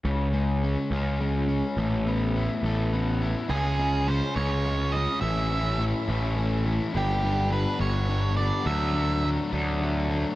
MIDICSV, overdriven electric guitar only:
0, 0, Header, 1, 2, 480
1, 0, Start_track
1, 0, Tempo, 574933
1, 43, Time_signature, 6, 3, 24, 8
1, 8642, End_track
2, 0, Start_track
2, 0, Title_t, "Overdriven electric guitar"
2, 0, Program_c, 0, 29
2, 41, Note_on_c, 0, 49, 62
2, 278, Note_on_c, 0, 56, 58
2, 529, Note_on_c, 0, 61, 63
2, 774, Note_on_c, 0, 65, 58
2, 997, Note_off_c, 0, 56, 0
2, 1007, Note_on_c, 0, 56, 60
2, 1237, Note_off_c, 0, 61, 0
2, 1240, Note_on_c, 0, 61, 63
2, 1242, Note_off_c, 0, 49, 0
2, 1484, Note_off_c, 0, 56, 0
2, 1487, Note_on_c, 0, 57, 64
2, 1488, Note_off_c, 0, 65, 0
2, 1724, Note_off_c, 0, 61, 0
2, 1727, Note_on_c, 0, 59, 58
2, 1971, Note_on_c, 0, 64, 59
2, 2217, Note_on_c, 0, 69, 59
2, 2435, Note_off_c, 0, 59, 0
2, 2445, Note_on_c, 0, 59, 63
2, 2672, Note_off_c, 0, 64, 0
2, 2682, Note_on_c, 0, 64, 61
2, 2685, Note_off_c, 0, 57, 0
2, 2908, Note_on_c, 0, 49, 80
2, 2917, Note_off_c, 0, 59, 0
2, 2921, Note_on_c, 0, 56, 85
2, 2922, Note_off_c, 0, 64, 0
2, 2922, Note_off_c, 0, 69, 0
2, 2925, Note_on_c, 0, 61, 82
2, 2925, Note_on_c, 0, 65, 92
2, 3156, Note_off_c, 0, 49, 0
2, 3161, Note_off_c, 0, 56, 0
2, 3166, Note_on_c, 0, 49, 69
2, 3171, Note_on_c, 0, 56, 76
2, 3173, Note_off_c, 0, 65, 0
2, 3177, Note_off_c, 0, 61, 0
2, 3181, Note_on_c, 0, 61, 78
2, 3183, Note_on_c, 0, 65, 77
2, 3390, Note_off_c, 0, 49, 0
2, 3390, Note_off_c, 0, 56, 0
2, 3399, Note_off_c, 0, 65, 0
2, 3400, Note_on_c, 0, 49, 70
2, 3400, Note_on_c, 0, 56, 81
2, 3405, Note_off_c, 0, 61, 0
2, 3408, Note_on_c, 0, 61, 83
2, 3409, Note_on_c, 0, 65, 80
2, 3637, Note_off_c, 0, 49, 0
2, 3647, Note_off_c, 0, 61, 0
2, 3647, Note_on_c, 0, 49, 70
2, 3650, Note_off_c, 0, 56, 0
2, 3655, Note_off_c, 0, 65, 0
2, 3657, Note_on_c, 0, 61, 73
2, 3660, Note_on_c, 0, 56, 69
2, 3665, Note_on_c, 0, 65, 71
2, 3878, Note_off_c, 0, 49, 0
2, 3887, Note_off_c, 0, 61, 0
2, 3888, Note_on_c, 0, 49, 69
2, 3889, Note_off_c, 0, 56, 0
2, 3895, Note_off_c, 0, 65, 0
2, 3897, Note_on_c, 0, 61, 72
2, 3899, Note_on_c, 0, 56, 78
2, 3905, Note_on_c, 0, 65, 83
2, 4128, Note_off_c, 0, 49, 0
2, 4136, Note_off_c, 0, 56, 0
2, 4137, Note_off_c, 0, 61, 0
2, 4138, Note_on_c, 0, 49, 74
2, 4141, Note_off_c, 0, 65, 0
2, 4146, Note_on_c, 0, 56, 78
2, 4147, Note_on_c, 0, 61, 75
2, 4151, Note_on_c, 0, 65, 81
2, 4356, Note_off_c, 0, 49, 0
2, 4360, Note_off_c, 0, 56, 0
2, 4360, Note_off_c, 0, 61, 0
2, 4362, Note_off_c, 0, 65, 0
2, 4365, Note_on_c, 0, 45, 78
2, 4365, Note_on_c, 0, 52, 79
2, 4372, Note_on_c, 0, 57, 89
2, 4374, Note_on_c, 0, 61, 85
2, 4379, Note_on_c, 0, 64, 93
2, 4583, Note_off_c, 0, 45, 0
2, 4593, Note_on_c, 0, 45, 72
2, 4596, Note_off_c, 0, 52, 0
2, 4596, Note_off_c, 0, 57, 0
2, 4603, Note_off_c, 0, 61, 0
2, 4606, Note_on_c, 0, 52, 77
2, 4606, Note_on_c, 0, 57, 71
2, 4610, Note_off_c, 0, 64, 0
2, 4613, Note_on_c, 0, 61, 84
2, 4620, Note_on_c, 0, 64, 83
2, 4822, Note_off_c, 0, 45, 0
2, 4832, Note_off_c, 0, 52, 0
2, 4832, Note_on_c, 0, 45, 73
2, 4834, Note_off_c, 0, 57, 0
2, 4838, Note_off_c, 0, 61, 0
2, 4839, Note_off_c, 0, 64, 0
2, 4842, Note_on_c, 0, 52, 81
2, 4844, Note_on_c, 0, 57, 75
2, 4848, Note_on_c, 0, 61, 78
2, 4849, Note_on_c, 0, 64, 83
2, 5072, Note_off_c, 0, 45, 0
2, 5075, Note_off_c, 0, 52, 0
2, 5082, Note_off_c, 0, 57, 0
2, 5082, Note_on_c, 0, 45, 68
2, 5084, Note_off_c, 0, 61, 0
2, 5085, Note_on_c, 0, 52, 71
2, 5089, Note_off_c, 0, 64, 0
2, 5092, Note_on_c, 0, 57, 68
2, 5094, Note_on_c, 0, 61, 71
2, 5099, Note_on_c, 0, 64, 71
2, 5300, Note_off_c, 0, 45, 0
2, 5310, Note_on_c, 0, 45, 73
2, 5313, Note_off_c, 0, 52, 0
2, 5314, Note_off_c, 0, 57, 0
2, 5321, Note_off_c, 0, 61, 0
2, 5321, Note_off_c, 0, 64, 0
2, 5323, Note_on_c, 0, 52, 83
2, 5324, Note_on_c, 0, 57, 78
2, 5331, Note_on_c, 0, 61, 75
2, 5331, Note_on_c, 0, 64, 80
2, 5537, Note_off_c, 0, 45, 0
2, 5546, Note_off_c, 0, 57, 0
2, 5547, Note_off_c, 0, 52, 0
2, 5547, Note_on_c, 0, 45, 76
2, 5553, Note_off_c, 0, 64, 0
2, 5556, Note_off_c, 0, 61, 0
2, 5556, Note_on_c, 0, 57, 81
2, 5557, Note_on_c, 0, 52, 78
2, 5563, Note_on_c, 0, 64, 82
2, 5566, Note_on_c, 0, 61, 76
2, 5780, Note_off_c, 0, 45, 0
2, 5784, Note_off_c, 0, 57, 0
2, 5785, Note_off_c, 0, 52, 0
2, 5786, Note_on_c, 0, 43, 84
2, 5788, Note_off_c, 0, 64, 0
2, 5789, Note_off_c, 0, 61, 0
2, 5792, Note_on_c, 0, 50, 79
2, 5795, Note_on_c, 0, 55, 85
2, 5798, Note_on_c, 0, 59, 96
2, 5805, Note_on_c, 0, 62, 80
2, 6026, Note_off_c, 0, 43, 0
2, 6030, Note_off_c, 0, 50, 0
2, 6036, Note_on_c, 0, 43, 75
2, 6039, Note_off_c, 0, 55, 0
2, 6039, Note_off_c, 0, 59, 0
2, 6040, Note_on_c, 0, 50, 74
2, 6049, Note_on_c, 0, 55, 76
2, 6049, Note_on_c, 0, 59, 72
2, 6053, Note_off_c, 0, 62, 0
2, 6056, Note_on_c, 0, 62, 90
2, 6254, Note_off_c, 0, 43, 0
2, 6258, Note_off_c, 0, 50, 0
2, 6264, Note_off_c, 0, 55, 0
2, 6264, Note_on_c, 0, 43, 75
2, 6268, Note_on_c, 0, 50, 76
2, 6273, Note_off_c, 0, 59, 0
2, 6274, Note_on_c, 0, 55, 71
2, 6283, Note_on_c, 0, 59, 83
2, 6284, Note_off_c, 0, 62, 0
2, 6288, Note_on_c, 0, 62, 85
2, 6491, Note_off_c, 0, 43, 0
2, 6494, Note_off_c, 0, 50, 0
2, 6501, Note_on_c, 0, 43, 68
2, 6504, Note_off_c, 0, 55, 0
2, 6504, Note_on_c, 0, 50, 65
2, 6505, Note_off_c, 0, 59, 0
2, 6510, Note_off_c, 0, 62, 0
2, 6514, Note_on_c, 0, 55, 72
2, 6515, Note_on_c, 0, 59, 71
2, 6520, Note_on_c, 0, 62, 76
2, 6737, Note_off_c, 0, 43, 0
2, 6746, Note_off_c, 0, 50, 0
2, 6747, Note_on_c, 0, 43, 77
2, 6753, Note_off_c, 0, 55, 0
2, 6755, Note_off_c, 0, 62, 0
2, 6756, Note_on_c, 0, 50, 76
2, 6757, Note_off_c, 0, 59, 0
2, 6763, Note_on_c, 0, 55, 76
2, 6765, Note_on_c, 0, 62, 86
2, 6767, Note_on_c, 0, 59, 77
2, 6984, Note_off_c, 0, 43, 0
2, 6986, Note_off_c, 0, 50, 0
2, 6990, Note_off_c, 0, 55, 0
2, 6994, Note_on_c, 0, 43, 73
2, 6996, Note_off_c, 0, 59, 0
2, 6996, Note_on_c, 0, 50, 81
2, 7000, Note_on_c, 0, 55, 84
2, 7004, Note_off_c, 0, 62, 0
2, 7006, Note_on_c, 0, 59, 78
2, 7014, Note_on_c, 0, 62, 79
2, 7220, Note_off_c, 0, 50, 0
2, 7223, Note_off_c, 0, 43, 0
2, 7226, Note_off_c, 0, 55, 0
2, 7229, Note_off_c, 0, 59, 0
2, 7230, Note_off_c, 0, 62, 0
2, 7230, Note_on_c, 0, 50, 81
2, 7235, Note_on_c, 0, 54, 83
2, 7240, Note_on_c, 0, 57, 86
2, 7240, Note_on_c, 0, 62, 92
2, 7458, Note_off_c, 0, 50, 0
2, 7460, Note_off_c, 0, 54, 0
2, 7468, Note_off_c, 0, 57, 0
2, 7468, Note_on_c, 0, 50, 70
2, 7471, Note_on_c, 0, 54, 76
2, 7475, Note_off_c, 0, 62, 0
2, 7478, Note_on_c, 0, 57, 80
2, 7485, Note_on_c, 0, 62, 80
2, 7705, Note_off_c, 0, 50, 0
2, 7710, Note_off_c, 0, 54, 0
2, 7715, Note_on_c, 0, 50, 77
2, 7719, Note_off_c, 0, 57, 0
2, 7720, Note_on_c, 0, 54, 76
2, 7725, Note_off_c, 0, 62, 0
2, 7729, Note_on_c, 0, 57, 75
2, 7735, Note_on_c, 0, 62, 90
2, 7929, Note_off_c, 0, 50, 0
2, 7931, Note_off_c, 0, 54, 0
2, 7939, Note_on_c, 0, 50, 70
2, 7941, Note_on_c, 0, 54, 67
2, 7942, Note_off_c, 0, 57, 0
2, 7944, Note_off_c, 0, 62, 0
2, 7952, Note_on_c, 0, 57, 70
2, 7954, Note_on_c, 0, 62, 82
2, 8180, Note_off_c, 0, 50, 0
2, 8190, Note_on_c, 0, 50, 73
2, 8193, Note_off_c, 0, 54, 0
2, 8194, Note_off_c, 0, 57, 0
2, 8194, Note_off_c, 0, 62, 0
2, 8203, Note_on_c, 0, 54, 78
2, 8204, Note_on_c, 0, 57, 88
2, 8204, Note_on_c, 0, 62, 76
2, 8416, Note_off_c, 0, 50, 0
2, 8426, Note_on_c, 0, 50, 73
2, 8427, Note_off_c, 0, 54, 0
2, 8430, Note_off_c, 0, 57, 0
2, 8431, Note_off_c, 0, 62, 0
2, 8437, Note_on_c, 0, 54, 75
2, 8440, Note_on_c, 0, 57, 79
2, 8441, Note_on_c, 0, 62, 83
2, 8642, Note_off_c, 0, 50, 0
2, 8642, Note_off_c, 0, 54, 0
2, 8642, Note_off_c, 0, 57, 0
2, 8642, Note_off_c, 0, 62, 0
2, 8642, End_track
0, 0, End_of_file